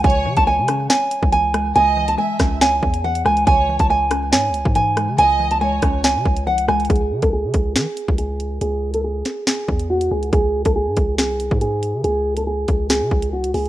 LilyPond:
<<
  \new Staff \with { instrumentName = "Violin section" } { \time 4/4 \key cis \minor \tempo 4 = 140 cis''4 r2. | dis''4 e''4 r2 | cis''4 r2. | dis''4 cis''4 r2 |
r1 | r1 | r1 | r1 | }
  \new Staff \with { instrumentName = "Nylon-string guitar" } { \time 4/4 \key cis \minor gis''8. a''16 gis''4 gis''4 gis''4 | gis''8. a''16 gis''4 gis''4 fis''8 gis''8 | gis''8. a''16 gis''4 gis''4 gis''4 | gis''8. a''16 gis''4 gis''4 fis''8 gis''8 |
gis'8. a'16 gis'4 gis'4 gis'4 | gis'8. a'16 gis'4 gis'4 fis'8 gis'8 | gis'8. a'16 gis'4 gis'4 gis'4 | gis'8. a'16 gis'4 gis'4 fis'8 gis'8 | }
  \new Staff \with { instrumentName = "Synth pluck" } { \clef bass \time 4/4 \key cis \minor cis8 e8 gis8 cis'8 cis''4 e8 gis8 | cis8 e8 gis8 cis'8 cis''4 e8 gis8 | cis8 e8 gis8 cis'8 cis''4 e8 gis8 | cis8 e8 gis8 cis'8 cis''4 e8 gis8 |
r1 | r1 | r1 | r1 | }
  \new Staff \with { instrumentName = "808-style bass" } { \clef bass \time 4/4 \key cis \minor cis,8 cis16 cis,8 cis8. r8. cis,4~ cis,16 | cis,4 r8 cis,4 e,4 cis,8 | cis,8. cis,4~ cis,16 gis,16. cis,16. gis,4 cis16 | cis,4. cis,8. cis16 cis,8 bis,,16 cis,16 cis,8 |
cis,8 cis16 cis,8 cis16 cis,8 e16 r8 cis,4~ cis,16 | cis,4. r4 e,4 cis,8 | cis,8. cis,8 gis,16 cis,8 bis,,8. gis,4 cis16 | cis,4. cis,8. cis16 cis,8 bis,,16 cis,16 cis,8 | }
  \new DrumStaff \with { instrumentName = "Drums" } \drummode { \time 4/4 <hh bd>32 hh8 r32 <hh bd>16 r8 <hh ss>8 sn8 hh16 bd16 hh8 <hh ss>8 | hh8. hh16 r8 <hh bd ss sn>8 sn8 bd16 hh16 r16 hh16 ss16 hh16 | <hh bd>8. <hh bd>16 r8 <hh ss>8 sn8 hh16 bd16 hh8 <hh ss>8 | hh8. hh16 r8 <hh bd ss>8 sn8 bd16 hh16 r16 hh16 ss16 hh32 hh32 |
<hh bd>32 hh8 r32 <hh bd>16 r8 <hh bd>8 sn8 hh16 bd16 hh8 hh8 | hh8. hh16 r8 <hh sn>8 sn8 bd16 hh16 r16 hh8 hh16 | <hh bd>8. <hh bd>16 r8 <hh bd>8 sn8 hh16 bd16 hh8 hh8 | hh8. hh16 r8 <hh bd>8 sn8 bd16 hh16 r16 hh16 hho16 hh16 | }
>>